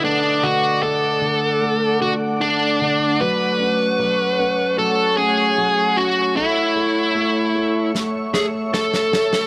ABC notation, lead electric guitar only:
X:1
M:4/4
L:1/8
Q:1/4=76
K:F#m
V:1 name="Lead electric guitar"
D F A3 F D2 | B4 A G2 F | E4 z G A2 |]